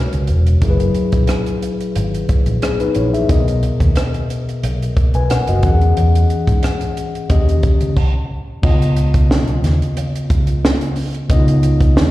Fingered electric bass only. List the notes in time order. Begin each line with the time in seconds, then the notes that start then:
0.14 C#2
0.29 E1
0.62 F#1
1.13 A#1
1.96 G#1
2.47 A#1
2.96 A#1
3.29 B1
3.80 D#2
4.63 B1
5.15 B1
5.48 F#1
5.63 E2
5.97 E2
6.47 G#2
7.30 D#2
7.81 C#2
8.63 C#2
9.29 B1
9.63 D#2
10.30 C#2
11.30 C#2
11.96 D#2